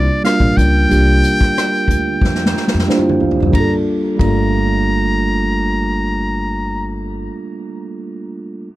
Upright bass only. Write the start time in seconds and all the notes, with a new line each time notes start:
0.41 A#1
0.58 C#2
0.91 C2
1.89 D2
2.22 F2
2.74 F2
3.23 muted upright bass stroke
3.40 F2
3.54 G1
4.20 G1